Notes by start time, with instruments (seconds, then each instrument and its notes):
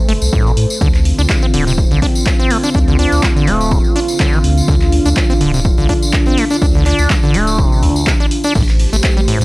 Already playing: analog synth pad A3 A4 C5
0.09 sub bass G1, acid bass A3, open hi-hat
0.22 sub bass C2, tambourine
0.33 acid bass A2, kick, tambourine
0.46 acid bass B2, tambourine
0.57 sub bass A2, open hi-hat
0.70 tambourine
0.81 sub bass D2, analog synth pad D3 C4 F4, acid bass D3, kick, tambourine
0.94 clap, tambourine
1.05 open hi-hat
1.18 sub bass D2, acid bass D4, tambourine
1.29 kick, clap, tambourine
1.42 acid bass C4, tambourine
1.54 sub bass D1, acid bass D3, open hi-hat
1.67 acid bass C3, tambourine
1.78 kick, tambourine
1.91 sub bass C2, acid bass D3, tambourine
2.02 acid bass D4, kick, open hi-hat
2.15 tambourine
2.26 kick, clap, tambourine
2.39 acid bass C4, tambourine
2.50 acid bass A3, open hi-hat
2.63 acid bass D4, tambourine
2.74 sub bass D2, acid bass D4, kick, tambourine
2.88 acid bass D3, tambourine
2.99 acid bass D4, open hi-hat
3.12 sub bass D2, tambourine
3.23 acid bass E3, kick, clap, tambourine
3.36 acid bass D3, tambourine
3.47 sub bass D1, acid bass A3, open hi-hat
3.61 tambourine
3.71 acid bass C3, kick, tambourine
3.84 tambourine
3.96 acid bass D4, open hi-hat
4.08 tambourine
4.20 acid bass D3, kick, clap, tambourine
4.33 acid bass E3, tambourine
4.44 sub bass D2, open hi-hat
4.57 tambourine
4.68 sub bass D2, acid bass D3, analog synth pad D4, kick, tambourine
4.81 clap, tambourine
4.92 open hi-hat
5.06 sub bass D2, acid bass D4, tambourine
5.16 kick, clap, tambourine
5.30 acid bass C4, tambourine
5.41 sub bass D1, acid bass D3, open hi-hat
5.54 acid bass C3, tambourine
5.65 kick, tambourine
5.77 sub bass C2, acid bass D3, tambourine
5.89 acid bass D4, kick, open hi-hat
6.02 tambourine
6.13 kick, clap
6.26 acid bass C4, tambourine
6.38 acid bass A3, open hi-hat
6.50 acid bass D4, tambourine
6.62 sub bass D2, acid bass D4, kick, tambourine
6.75 acid bass D3, tambourine
6.86 acid bass D4, clap, open hi-hat
6.99 sub bass D2, tambourine
7.10 acid bass E3, kick, clap, tambourine
7.23 acid bass D3, tambourine
7.34 sub bass D1, acid bass A3, open hi-hat
7.47 tambourine
7.58 acid bass C3, kick, tambourine
7.72 tambourine
7.83 acid bass D2, sub bass D2, open hi-hat
7.96 tambourine
8.07 acid bass D3, kick, clap, tambourine
8.20 acid bass D4, tambourine
8.31 open hi-hat
8.44 acid bass D4, tambourine
8.55 sub bass A1, acid bass A2, analog synth pad A3 G4 C5, kick, tambourine, crash
8.69 clap, tambourine
8.79 open hi-hat
8.93 sub bass A1, acid bass A3, tambourine
9.04 kick, clap, tambourine
9.17 acid bass G3, tambourine
9.28 sub bass A2, acid bass A2, open hi-hat
9.41 acid bass G2, tambourine